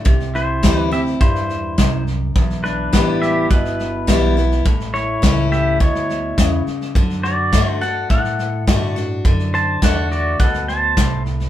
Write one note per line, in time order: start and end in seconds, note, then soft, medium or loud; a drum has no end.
0.05 0.61 C2 medium
0.05 1.14 C3 medium
0.05 kick loud
0.05 snare soft
0.20 snare soft
0.35 0.88 E4 medium
0.35 0.78 C5 medium
0.35 snare soft
0.63 1.19 D2 medium
0.63 0.90 E3 medium
0.63 0.91 G3 medium
0.63 0.91 C4 medium
0.63 0.90 E4 medium
0.63 kick medium
0.63 snare loud
0.63 hi-hat pedal medium
0.78 0.94 B4 medium
0.91 1.20 C4 medium
0.91 1.19 E4 medium
0.91 1.00 G4 medium
0.91 1.00 E5 loud
0.91 snare soft
1.06 snare soft
1.21 1.76 E2 medium
1.21 1.75 G2 medium
1.21 2.03 E4 medium
1.21 2.03 C5 medium
1.21 kick loud
1.21 snare soft
1.35 snare soft
1.49 snare soft
1.78 2.34 C2 medium
1.78 2.32 F#2 medium
1.78 kick medium
1.78 snare loud
1.78 hi-hat pedal medium
2.07 snare soft
2.36 2.91 B1 medium
2.36 3.45 E2 medium
2.36 kick loud
2.36 snare soft
2.50 snare soft
2.64 3.18 D4 medium
2.64 3.23 B4 medium
2.64 snare soft
2.93 3.49 A1 medium
2.93 3.47 E3 medium
2.93 3.48 G3 medium
2.93 3.48 B3 medium
2.93 3.48 E4 medium
2.93 kick medium
2.93 snare loud
2.93 hi-hat pedal medium
3.22 3.49 G4 medium
3.22 3.48 E5 loud
3.22 snare soft
3.50 4.06 G1 medium
3.50 4.60 B2 medium
3.50 4.33 E4 medium
3.50 4.33 B4 medium
3.50 kick loud
3.50 snare soft
3.65 snare soft
3.79 snare soft
4.07 4.64 B1 loud
4.07 4.35 E3 medium
4.07 4.35 G3 medium
4.07 4.36 B3 medium
4.07 4.36 E4 loud
4.07 kick medium
4.07 snare loud
4.07 hi-hat pedal medium
4.37 4.65 B3 medium
4.37 4.64 E4 medium
4.37 snare soft
4.51 snare soft
4.66 5.21 A1 medium
4.66 5.75 A2 medium
4.66 kick loud
4.66 snare soft
4.80 snare soft
4.94 5.48 E4 medium
4.94 5.52 C#5 medium
4.94 snare soft
5.22 5.79 C#2 medium
5.22 5.77 E3 medium
5.22 5.77 A3 medium
5.22 5.78 C#4 medium
5.22 5.78 E4 medium
5.22 kick medium
5.22 snare loud
5.22 hi-hat pedal medium
5.52 5.79 G4 medium
5.52 5.80 E5 loud
5.52 snare soft
5.80 6.36 D2 medium
5.80 6.35 B2 medium
5.80 6.63 E4 medium
5.80 6.63 C#5 medium
5.80 kick loud
5.80 snare soft
5.95 snare soft
6.09 snare soft
6.38 6.65 E2 loud
6.38 6.92 C#3 loud
6.38 kick medium
6.38 snare loud
6.38 hi-hat pedal medium
6.66 muted upright bass stroke soft
6.66 snare soft
6.81 snare soft
6.95 7.51 F#2 medium
6.95 7.51 D3 loud
6.95 kick loud
6.95 snare soft
7.10 snare soft
7.23 7.77 F#4 medium
7.23 7.69 D5 medium
7.23 snare soft
7.53 8.08 G2 medium
7.53 7.80 D3 medium
7.53 7.80 A3 medium
7.53 7.81 D4 medium
7.53 7.80 F#4 medium
7.53 kick medium
7.53 snare loud
7.53 hi-hat pedal medium
7.69 7.81 C5 medium
7.81 8.10 D4 medium
7.81 8.09 F#4 medium
7.81 8.08 A4 medium
7.81 8.10 F#5 medium
7.81 snare soft
8.10 9.19 A2 medium
8.10 8.66 A2 medium
8.10 8.64 A4 medium
8.10 8.64 F#5 medium
8.10 kick loud
8.10 snare soft
8.24 snare soft
8.39 snare soft
8.67 9.23 G2 loud
8.67 8.95 D3 loud
8.67 8.95 A3 medium
8.67 8.96 D4 medium
8.67 8.95 F#4 loud
8.67 kick medium
8.67 snare loud
8.67 hi-hat pedal medium
8.96 9.25 D4 soft
8.96 9.24 F#4 medium
8.96 snare soft
9.25 9.80 F#2 medium
9.25 9.81 D3 medium
9.25 kick loud
9.25 snare soft
9.39 snare soft
9.54 9.80 C5 medium
9.54 9.84 A5 loud
9.54 snare soft
9.82 10.38 E2 medium
9.82 10.37 D3 medium
9.82 10.37 A3 medium
9.82 10.37 D4 medium
9.82 10.38 F#4 medium
9.82 10.10 A4 medium
9.82 10.13 F#5 medium
9.82 kick medium
9.82 snare loud
9.82 hi-hat pedal medium
10.11 10.38 F#4 medium
10.11 10.41 D5 medium
10.11 snare soft
10.40 10.95 D2 medium
10.40 10.94 B2 medium
10.40 10.67 A4 medium
10.40 10.69 F#5 medium
10.40 kick loud
10.40 snare soft
10.54 snare soft
10.68 11.22 C5 medium
10.68 11.22 A5 medium
10.68 snare soft
10.97 11.49 C2 loud
10.97 11.49 A2 medium
10.97 kick medium
10.97 snare loud
10.97 hi-hat pedal medium
11.26 snare soft
11.40 snare soft